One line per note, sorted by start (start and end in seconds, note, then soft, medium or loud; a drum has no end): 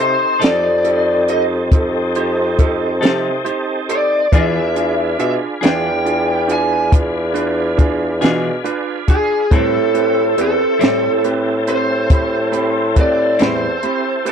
0.00 0.18 C3 medium
0.00 4.28 C4 medium
0.00 0.30 D#4 soft
0.00 4.28 D#4 medium
0.00 0.30 G4 soft
0.00 4.27 G4 medium
0.00 0.30 A4 medium
0.00 4.28 A4 medium
0.00 0.39 C5 medium
0.40 1.68 F2 medium
0.40 0.68 F3 soft
0.40 0.67 C4 soft
0.40 0.67 D#4 medium
0.40 0.73 D#4 soft
0.40 0.74 G4 soft
0.40 0.66 A4 medium
0.40 0.74 A4 soft
0.40 closed hi-hat medium
0.44 1.30 D5 medium
0.44 snare medium
0.84 1.17 D#4 soft
0.84 1.17 G4 soft
0.84 1.17 A4 medium
0.84 closed hi-hat medium
1.28 1.61 D#4 medium
1.28 1.61 G4 soft
1.28 1.61 A4 soft
1.28 1.42 D#5 medium
1.28 closed hi-hat medium
1.72 2.98 F2 medium
1.72 2.05 D#4 soft
1.72 2.05 G4 soft
1.72 2.04 A4 soft
1.72 kick loud
1.72 closed hi-hat medium
2.15 2.48 D#4 medium
2.15 2.48 G4 medium
2.15 2.48 C5 medium
2.15 closed hi-hat medium
2.59 2.91 D#4 medium
2.59 2.91 G4 medium
2.59 2.91 A4 medium
2.59 kick medium
2.59 closed hi-hat medium
3.01 3.42 C3 medium
3.01 3.29 F3 medium
3.01 3.28 C4 medium
3.01 3.34 D#4 medium
3.01 3.28 D#4 medium
3.01 3.34 G4 medium
3.01 3.27 A4 medium
3.01 3.34 A4 medium
3.01 closed hi-hat medium
3.05 snare loud
3.45 3.78 D#4 medium
3.45 3.78 G4 medium
3.45 3.78 C5 medium
3.45 closed hi-hat medium
3.89 4.21 D#4 soft
3.89 4.21 G4 soft
3.89 4.21 A4 medium
3.89 4.33 D5 medium
3.89 closed hi-hat medium
4.32 5.15 E2 loud
4.32 4.58 E3 medium
4.32 4.58 D4 medium
4.32 4.65 D4 medium
4.32 9.47 D4 medium
4.32 9.47 F4 medium
4.32 4.65 F4 medium
4.32 4.59 F4 medium
4.32 4.65 G#4 medium
4.32 9.47 G#4 medium
4.32 4.59 G#4 medium
4.32 9.47 B4 medium
4.32 5.19 E5 medium
4.32 kick medium
4.32 closed hi-hat medium
4.75 5.08 D4 soft
4.75 5.08 F4 soft
4.75 5.08 G#4 medium
4.75 closed hi-hat medium
5.19 5.39 B2 medium
5.19 5.51 D4 medium
5.19 5.51 F4 soft
5.19 5.51 G#4 medium
5.19 5.32 E5 medium
5.19 closed hi-hat medium
5.61 6.88 E2 medium
5.61 5.89 E3 medium
5.61 5.94 D4 soft
5.61 5.88 D4 medium
5.61 5.95 F4 soft
5.61 5.88 F4 medium
5.61 5.88 G#4 medium
5.61 5.95 G#4 medium
5.61 6.51 G5 medium
5.61 closed hi-hat medium
5.66 snare loud
6.05 6.38 D4 soft
6.05 6.38 F4 soft
6.05 6.38 G#4 medium
6.05 closed hi-hat medium
6.48 6.81 D4 medium
6.48 6.81 F4 soft
6.48 6.81 G#4 medium
6.48 closed hi-hat medium
6.52 6.91 G#5 medium
6.91 8.18 E2 medium
6.91 7.24 D4 soft
6.91 7.24 F4 soft
6.91 7.24 G#4 medium
6.91 kick loud
6.91 closed hi-hat medium
7.34 7.67 D4 medium
7.34 7.67 F4 medium
7.34 7.67 B4 medium
7.34 closed hi-hat medium
7.77 8.10 D4 medium
7.77 8.11 F4 medium
7.77 8.10 G#4 medium
7.77 kick medium
7.77 closed hi-hat medium
8.21 8.62 B2 medium
8.21 8.48 E3 medium
8.21 8.54 D4 medium
8.21 8.48 D4 medium
8.21 8.54 F4 medium
8.21 8.48 F4 medium
8.21 8.47 G#4 medium
8.21 8.54 G#4 medium
8.21 snare medium
8.21 closed hi-hat medium
8.64 8.97 D4 medium
8.64 8.97 F4 medium
8.64 8.97 B4 medium
8.64 closed hi-hat medium
9.07 9.40 D4 soft
9.07 9.40 F4 soft
9.07 9.40 G#4 medium
9.07 9.53 G#4 medium
9.07 kick medium
9.07 closed hi-hat medium
9.50 9.77 A2 medium
9.50 10.33 A2 loud
9.50 9.77 G3 medium
9.50 9.83 C4 medium
9.50 14.32 C4 medium
9.50 9.78 C4 medium
9.50 14.32 E4 medium
9.50 9.78 E4 medium
9.50 14.32 G4 medium
9.50 9.84 G4 soft
9.50 14.32 A4 medium
9.50 9.83 B4 medium
9.50 kick medium
9.50 closed hi-hat medium
9.54 10.41 A4 loud
9.94 10.27 C4 soft
9.94 10.27 G4 soft
9.94 10.27 B4 medium
9.94 closed hi-hat medium
10.37 10.57 E2 medium
10.37 10.70 C4 soft
10.37 10.70 G4 soft
10.37 10.70 B4 medium
10.37 closed hi-hat medium
10.42 11.22 A4 medium
10.79 12.06 A2 medium
10.79 11.07 A2 medium
10.79 11.07 G3 soft
10.79 11.06 C4 medium
10.79 11.13 C4 medium
10.79 11.06 E4 medium
10.79 11.13 G4 soft
10.79 11.13 D5 medium
10.79 closed hi-hat medium
10.84 snare medium
11.24 11.56 C4 soft
11.24 11.56 G4 soft
11.24 11.56 B4 medium
11.24 closed hi-hat soft
11.67 12.00 C4 soft
11.67 12.00 G4 soft
11.67 12.00 C5 medium
11.67 12.93 C5 medium
11.67 closed hi-hat medium
12.10 13.35 A2 medium
12.10 12.43 C4 soft
12.10 12.43 G4 soft
12.10 12.43 B5 soft
12.10 kick loud
12.10 closed hi-hat medium
12.52 12.85 C4 medium
12.52 12.85 G4 soft
12.52 12.85 B5 medium
12.52 closed hi-hat medium
12.96 13.28 C4 medium
12.96 13.28 G4 soft
12.96 13.28 B4 medium
12.96 kick medium
12.96 closed hi-hat medium
13.00 13.38 D5 medium
13.39 13.79 E2 medium
13.39 13.66 A2 medium
13.39 13.65 G3 medium
13.39 13.65 C4 medium
13.39 13.72 C4 medium
13.39 13.65 E4 medium
13.39 13.72 G4 soft
13.39 13.72 B5 medium
13.39 snare loud
13.39 closed hi-hat medium
13.43 14.30 C5 medium
13.83 14.15 C4 medium
13.83 14.15 G4 soft
13.83 14.15 B5 medium
13.83 closed hi-hat medium
14.25 14.32 C4 soft
14.25 14.32 G4 soft
14.25 14.32 B4 medium
14.25 closed hi-hat medium